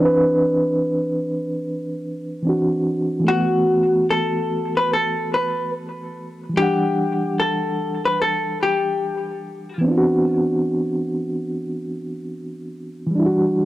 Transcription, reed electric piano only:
0.00 2.37 E3 medium
0.00 2.40 C4 medium
0.00 2.42 D4 medium
0.05 2.44 B4 medium
2.42 3.19 E3 medium
2.42 3.27 C4 soft
2.47 3.28 D4 soft
2.47 3.29 F#4 medium
3.20 6.48 E3 medium
3.24 6.50 A3 medium
3.29 6.52 B3 medium
3.33 6.54 F#4 medium
6.49 9.77 E3 medium
6.54 9.79 G3 medium
6.58 9.81 D4 medium
6.62 9.84 F#5 medium
9.78 13.05 E3 medium
9.78 13.07 B3 medium
9.84 13.09 C4 medium
9.84 13.10 D4 medium
9.91 9.95 F4 medium
9.97 13.15 F#4 medium
13.07 13.65 E3 medium
13.11 13.65 G3 medium
13.15 13.65 D4 medium
13.20 13.24 E4 medium
13.26 13.65 F#4 medium

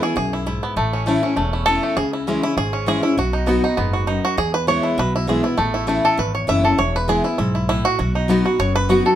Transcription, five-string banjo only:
0.03 0.15 G#4 medium
0.17 0.46 G#4 medium
0.33 0.47 E4 medium
0.47 0.93 E4 medium
0.63 0.77 B3 medium
0.77 1.06 A3 medium
0.93 1.22 C#4 medium
1.07 1.35 A3 medium
1.23 1.64 C#4 medium
1.36 1.80 A3 medium
1.53 1.94 E4 medium
1.66 1.97 A4 loud
1.83 1.97 A3 medium
1.97 2.13 G#4 loud
2.13 2.42 E4 medium
2.28 2.71 C#4 medium
2.43 2.57 E4 medium
2.58 2.87 G#4 loud
2.73 3.15 C#4 medium
2.88 3.03 G#4 loud
3.03 3.17 E4 medium
3.19 3.91 F#4 medium
3.33 3.63 D#4 medium
3.47 3.76 B3 medium
3.64 4.05 D#4 medium
3.77 4.21 B3 medium
3.93 4.23 F#4 medium
4.07 4.38 D#4 medium
4.25 4.38 F#4 medium
4.38 4.54 G#4 loud
4.54 4.68 B4 loud
4.68 4.99 C#5 loud
4.83 5.16 E4 medium
4.99 5.15 B4 loud
5.16 5.29 E4 medium
5.29 5.43 G#4 medium
5.44 5.74 E4 medium
5.58 5.87 A3 medium
5.74 6.16 E4 medium
5.88 6.31 A3 medium
6.05 6.19 A4 medium
6.19 6.34 B4 loud
6.35 6.48 C#5 medium
6.49 6.78 E5 loud
6.65 6.79 A4 medium
6.79 6.95 C#5 loud
6.96 7.10 B4 medium
7.09 7.52 G#4 loud
7.24 7.37 E4 medium
7.38 7.54 E4 medium
7.55 7.68 E4 medium
7.69 7.86 E4 medium
7.85 7.97 F#4 loud
7.99 8.42 F#4 medium
8.15 8.56 D#4 medium
8.30 9.09 B3 medium
8.46 8.87 F#4 medium
8.60 8.75 C#5 loud
8.76 9.15 B4 loud
8.90 9.15 F#4 medium
9.06 9.15 A4 medium

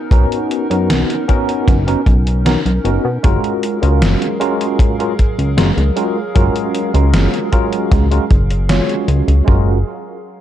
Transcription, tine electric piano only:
0.11 0.66 B3 medium
0.11 0.66 C#4 medium
0.11 0.66 D#4 medium
0.11 0.66 F#4 medium
0.11 0.66 A#4 loud
0.70 1.24 B3 medium
0.70 1.24 C#4 medium
0.70 1.24 D#4 medium
0.70 1.24 F#4 medium
0.70 1.25 A#4 medium
1.28 1.83 B3 loud
1.28 1.83 C#4 medium
1.28 1.83 D#4 medium
1.28 1.83 F#4 medium
1.28 1.83 A#4 loud
1.87 2.00 B3 medium
1.87 2.00 C#4 medium
1.87 2.00 D#4 medium
1.87 2.00 F#4 medium
1.87 2.00 A#4 medium
2.45 2.58 B3 medium
2.45 2.58 C#4 medium
2.45 2.59 D#4 medium
2.45 2.59 F#4 medium
2.45 2.59 A#4 loud
2.84 3.05 B3 medium
2.84 3.05 C#4 medium
2.84 3.05 D#4 medium
2.84 3.05 F#4 medium
2.84 3.06 A#4 loud
3.23 3.77 G#3 loud
3.23 3.78 C#4 medium
3.23 3.78 F4 medium
3.23 3.78 F#4 medium
3.23 3.78 A#4 loud
3.82 4.36 G#3 medium
3.82 4.36 C#4 medium
3.82 4.36 F4 medium
3.82 4.36 F#4 medium
3.82 4.36 A#4 medium
4.40 4.94 G#3 loud
4.40 4.94 C#4 medium
4.40 4.95 F4 medium
4.40 4.95 F#4 medium
4.40 4.95 A#4 loud
4.99 5.11 G#3 medium
4.99 5.12 C#4 medium
4.99 5.12 F4 medium
4.99 5.12 F#4 medium
4.99 5.12 A#4 medium
5.57 5.70 G#3 medium
5.57 5.70 C#4 medium
5.57 5.70 F4 medium
5.57 5.71 F#4 medium
5.57 5.71 A#4 loud
5.96 6.17 G#3 medium
5.96 6.17 C#4 medium
5.96 6.17 F4 medium
5.96 6.17 F#4 medium
5.96 6.17 A#4 medium
6.35 6.89 G#3 medium
6.35 6.89 C#4 medium
6.35 6.89 F4 medium
6.35 6.90 F#4 medium
6.35 6.90 A#4 loud
6.94 7.47 G#3 medium
6.94 7.48 C#4 medium
6.94 7.48 F4 medium
6.94 7.48 F#4 medium
6.94 7.48 A#4 medium
7.52 8.06 G#3 loud
7.52 8.06 C#4 medium
7.52 8.06 F4 medium
7.52 8.07 F#4 medium
7.52 8.07 A#4 loud
8.11 8.23 G#3 medium
8.11 8.23 C#4 medium
8.11 8.24 F4 medium
8.11 8.24 F#4 medium
8.11 8.24 A#4 medium
8.69 9.42 G#3 medium
8.69 9.42 C#4 medium
8.69 9.43 F4 medium
8.69 9.43 F#4 medium
8.69 9.43 C#5 medium
9.45 9.75 G#3 medium
9.45 9.76 C#4 medium
9.45 9.76 F4 medium
9.45 9.77 F#4 medium
9.49 9.77 A#4 medium

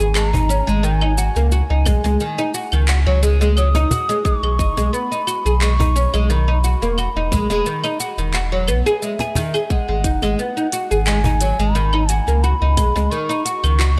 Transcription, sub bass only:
0.00 0.61 G#1 loud
0.68 1.30 G#1 medium
1.36 1.62 C#2 medium
1.70 1.88 C#2 medium
1.86 2.00 B1 medium
2.05 2.17 C#2 medium
2.73 3.06 C#2 loud
3.07 3.85 C#2 medium
4.43 4.61 B1 medium
4.59 4.73 F#1 medium
4.77 4.90 B1 medium
5.45 6.07 B1 medium
6.14 6.75 B1 medium
6.82 7.08 E1 medium
7.16 7.33 E1 loud
7.32 7.46 B1 loud
7.50 7.62 E1 medium
8.18 8.69 E1 loud
8.68 8.82 B1 loud
9.88 10.06 G#1 loud
10.04 10.18 F#1 medium
10.23 10.35 G#1 loud
10.91 11.53 G#1 medium
11.59 12.20 G#1 loud
12.28 12.53 C#2 medium
12.61 12.79 C#2 loud
12.77 12.91 B1 loud
12.95 13.08 C#2 loud
13.63 13.97 C#2 loud

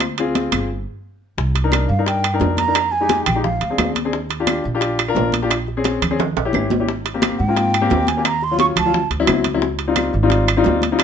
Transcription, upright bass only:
0.00 0.47 D2 medium
0.52 0.84 G1 medium
1.38 1.86 C2 medium
1.89 2.37 G2 medium
2.40 3.21 F2 medium
3.27 3.59 A#1 medium
3.61 3.77 D2 medium
3.78 4.59 D#2 medium
4.65 5.13 A#1 medium
5.17 5.97 A#1 medium
6.02 6.34 D#2 medium
6.36 6.52 A#1 medium
6.54 7.34 G#1 medium
7.40 7.88 G#2 medium
7.91 8.71 D#2 medium
8.77 9.09 D2 medium
9.10 9.27 D2 medium
9.28 10.08 C#2 medium
10.14 10.62 G#1 medium
10.66 11.04 D2 medium

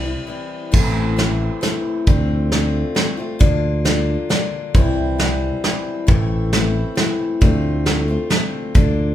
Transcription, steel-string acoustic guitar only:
0.05 0.26 G3 soft
0.05 0.27 C4 soft
0.05 0.28 E4 soft
0.27 0.71 E3 medium
0.27 0.72 G3 medium
0.27 0.72 C4 medium
0.27 0.72 E4 medium
0.72 1.17 A2 medium
0.72 1.15 E3 medium
0.72 1.17 A3 medium
0.72 1.18 C4 medium
0.72 1.18 E4 loud
1.17 1.60 E3 medium
1.17 1.61 A3 medium
1.17 1.61 C4 medium
1.17 1.62 E4 medium
1.61 2.06 E3 medium
1.61 2.06 A3 medium
1.61 2.06 C4 medium
1.61 2.08 E4 medium
2.07 2.51 D3 loud
2.07 2.51 A3 medium
2.07 2.52 C4 loud
2.07 2.54 F4 loud
2.52 2.94 D3 medium
2.52 2.95 A3 medium
2.52 2.95 C4 medium
2.52 2.97 F4 medium
2.95 3.18 D3 medium
2.95 3.19 A3 medium
2.95 3.17 C4 medium
2.95 3.16 F4 medium
3.17 3.40 A3 medium
3.17 3.40 C4 medium
3.17 3.40 F4 medium
3.39 3.84 D3 loud
3.39 3.84 A#3 loud
3.39 3.85 D4 loud
3.39 3.86 F4 loud
3.85 4.28 D3 medium
3.85 4.29 A#3 medium
3.85 4.30 D4 medium
3.85 4.31 F4 medium
4.29 4.75 D3 medium
4.29 4.75 A#3 medium
4.29 4.75 D4 medium
4.29 4.76 F4 medium
4.74 5.19 C3 medium
4.74 5.18 E3 medium
4.74 5.18 G3 medium
4.74 5.20 C4 loud
4.74 5.21 E4 loud
5.18 5.62 E3 medium
5.18 5.63 G3 medium
5.18 5.65 C4 medium
5.18 5.65 E4 medium
5.64 6.06 E3 medium
5.64 6.07 G3 medium
5.64 6.08 C4 medium
5.64 6.07 E4 medium
6.07 6.52 A2 medium
6.07 6.51 E3 medium
6.07 6.53 A3 loud
6.07 6.54 C4 medium
6.07 6.53 E4 loud
6.52 6.94 E3 medium
6.52 6.96 A3 medium
6.52 6.96 C4 medium
6.52 6.97 E4 medium
6.95 7.40 E3 medium
6.95 7.41 A3 medium
6.95 7.41 C4 medium
6.95 7.42 E4 medium
7.41 7.85 D3 medium
7.41 7.86 A3 medium
7.41 7.86 C4 loud
7.41 7.88 F4 loud
7.86 8.08 D3 medium
7.86 8.09 A3 medium
7.86 8.08 C4 medium
7.86 8.07 F4 medium
8.08 8.30 A3 soft
8.08 8.30 C4 medium
8.08 8.30 F4 medium
8.30 8.73 D3 medium
8.30 8.75 A3 medium
8.30 8.75 C4 medium
8.30 8.75 F4 medium
8.75 9.15 D3 loud
8.75 9.15 A#3 medium
8.75 9.15 D4 loud
8.75 9.15 F4 loud

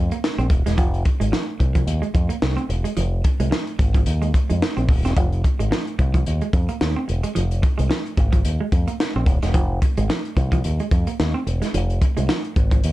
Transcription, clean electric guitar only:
0.12 0.19 A#3 medium
0.39 0.46 C4 medium
0.51 muted clean electric guitar stroke soft
0.66 0.73 G#3 medium
0.78 0.87 F3 medium
1.05 muted clean electric guitar stroke soft
1.20 1.27 G#3 medium
1.32 1.41 F3 medium
1.60 muted clean electric guitar stroke soft
1.75 1.82 F3 medium
2.02 2.09 G#3 medium
2.14 muted clean electric guitar stroke soft
2.29 2.37 A#3 medium
2.57 2.64 C4 medium
2.69 muted clean electric guitar stroke soft
2.84 2.92 G#3 medium
2.97 3.06 F3 medium
3.24 muted clean electric guitar stroke soft
3.40 3.47 G#3 medium
3.51 3.60 F3 medium
3.79 muted clean electric guitar stroke soft
3.95 4.02 F3 medium
4.22 4.29 G#3 medium
4.34 muted clean electric guitar stroke soft
4.50 4.57 G#3 medium
4.77 4.84 C4 medium
4.90 muted clean electric guitar stroke soft
5.05 5.12 C4 medium
5.17 5.26 F3 medium
5.44 muted clean electric guitar stroke soft
5.59 5.66 G#3 medium
5.71 5.80 F3 medium
5.99 muted clean electric guitar stroke soft
6.15 6.21 F3 medium
6.42 6.49 G#3 medium
6.54 muted clean electric guitar stroke soft
6.69 6.76 A#3 medium
6.96 7.03 C4 medium
7.08 muted clean electric guitar stroke soft
7.23 7.30 G#3 medium
7.35 7.44 F3 loud
7.62 muted clean electric guitar stroke medium
7.78 7.85 G#3 medium
7.90 7.99 F3 medium
8.17 muted clean electric guitar stroke soft
8.32 8.40 F3 medium
8.61 8.67 G#3 medium
8.73 muted clean electric guitar stroke soft
8.88 8.95 A#3 medium
9.16 9.23 C4 medium
9.27 muted clean electric guitar stroke soft
9.43 9.50 G#3 medium
9.55 9.64 F3 medium
9.83 muted clean electric guitar stroke soft
9.98 10.05 G#3 medium
10.10 10.18 F3 medium
10.38 muted clean electric guitar stroke soft
10.53 10.60 F3 medium
10.80 10.87 G#3 medium
10.92 muted clean electric guitar stroke soft
11.07 11.14 A#3 medium
11.34 11.41 C4 medium
11.47 muted clean electric guitar stroke soft
11.62 11.69 G#3 medium
11.74 11.83 F3 medium
12.01 muted clean electric guitar stroke soft
12.17 12.24 G#3 medium
12.29 12.38 F3 medium
12.56 muted clean electric guitar stroke soft
12.72 12.79 F3 medium

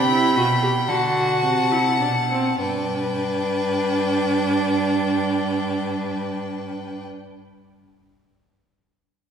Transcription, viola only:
0.00 0.11 D4 medium
0.12 0.36 E4 medium
0.37 0.45 F#4 medium
0.63 0.71 G4 medium
0.89 1.73 F#4 medium
1.72 2.00 E4 medium
2.01 2.09 D4 medium
2.30 2.60 C4 medium
2.61 7.03 D4 medium

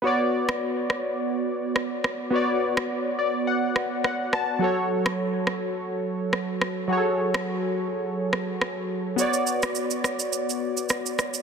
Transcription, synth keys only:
0.02 2.28 B3 medium
0.02 2.28 F#4 medium
0.02 2.29 C#5 medium
0.07 2.30 D5 medium
2.30 4.56 B3 medium
2.30 4.57 F#4 medium
2.30 4.58 C#5 medium
2.35 3.17 D5 medium
3.19 3.45 D5 medium
3.47 4.00 F#5 medium
4.04 4.31 F#5 medium
4.33 4.59 A5 medium
4.59 6.85 F#3 medium
4.59 6.86 F#4 medium
4.59 6.86 A4 medium
4.64 6.87 C#5 medium
6.88 9.13 F#3 medium
6.88 9.14 F#4 medium
6.88 6.98 G#4 medium
6.93 9.16 C#5 medium
6.97 9.18 A4 medium
9.16 11.42 B3 medium
9.16 11.42 F#4 medium
9.16 11.42 C#5 medium
9.21 11.42 D5 medium

